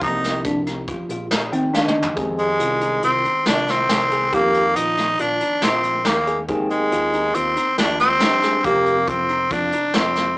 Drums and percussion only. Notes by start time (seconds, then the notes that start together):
0.01 kick, closed hi-hat
0.24 snare, closed hi-hat
0.45 kick, closed hi-hat
0.67 snare, closed hi-hat
0.88 kick, closed hi-hat
1.09 closed hi-hat
1.31 snare, closed hi-hat
1.53 closed hi-hat
1.74 snare
1.88 mid tom
2.02 floor tom
2.17 kick, closed hi-hat
2.38 closed hi-hat
2.60 closed hi-hat
2.81 closed hi-hat
3.02 closed hi-hat
3.24 closed hi-hat
3.46 snare, closed hi-hat
3.68 snare, closed hi-hat
3.89 snare, closed hi-hat
4.11 closed hi-hat
4.32 kick, closed hi-hat
4.54 closed hi-hat
4.76 closed hi-hat
4.98 snare, closed hi-hat
5.19 closed hi-hat
5.41 closed hi-hat
5.62 snare, closed hi-hat
5.84 closed hi-hat
6.05 snare, closed hi-hat
6.27 closed hi-hat
6.48 kick, closed hi-hat
6.70 closed hi-hat
6.92 closed hi-hat
7.13 closed hi-hat
7.34 closed hi-hat
7.56 closed hi-hat
7.78 snare, closed hi-hat
7.99 snare, closed hi-hat
8.20 snare, closed hi-hat
8.42 snare, closed hi-hat
8.64 kick, closed hi-hat
8.86 closed hi-hat
9.07 kick, closed hi-hat
9.29 closed hi-hat
9.51 kick, closed hi-hat
9.72 closed hi-hat
9.94 snare, closed hi-hat
10.15 snare, closed hi-hat